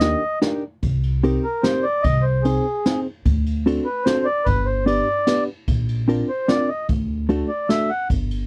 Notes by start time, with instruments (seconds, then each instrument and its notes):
Already playing: upright bass D#2, accordion D#5
0.00 hollow-body jazz guitar D4 D#4 G4 A#4, snare, closed hi-hat
0.42 hollow-body jazz guitar D4 D#4 G4 A#4, snare, closed hi-hat
0.83 upright bass C2, kick, ride
1.03 ride
1.23 hollow-body jazz guitar C4 D#4 G4 A#4, ride
1.44 accordion A#4
1.63 hollow-body jazz guitar C4 D#4 G4 A#4, accordion C5, snare, ride
1.83 accordion D5
2.02 upright bass C2, accordion D#5, kick, ride
2.22 accordion C5
2.42 hollow-body jazz guitar C4 D#4 G#4 C5, accordion G#4, ride
2.86 hollow-body jazz guitar C4 D#4 G#4 C5, snare, ride
3.25 upright bass D2, kick, ride
3.46 ride
3.66 hollow-body jazz guitar C4 D4 F#4 A4, ride
3.85 accordion B4
4.04 hollow-body jazz guitar C4 D4 F#4 A4, accordion C5, snare, ride
4.25 accordion D5
4.45 upright bass G1, accordion B4, kick, ride
4.66 accordion C5
4.86 hollow-body jazz guitar B3 D4 G4 B4, accordion D5, ride
5.27 hollow-body jazz guitar B3 D4 G4 B4, snare, ride
5.68 upright bass A#1, kick, ride
5.89 ride
6.08 hollow-body jazz guitar C4 D4 F4 A#4, ride
6.29 accordion C5
6.48 hollow-body jazz guitar C4 D4 F4 A#4, accordion D5, snare, ride
6.69 accordion D#5
6.89 upright bass D2, kick, ride
7.29 hollow-body jazz guitar A3 D4 F#4 A4, ride
7.48 accordion D5
7.69 hollow-body jazz guitar A3 D4 F#4 A4, accordion E5, snare, ride
7.90 accordion F#5
8.10 upright bass G1, kick, ride
8.31 ride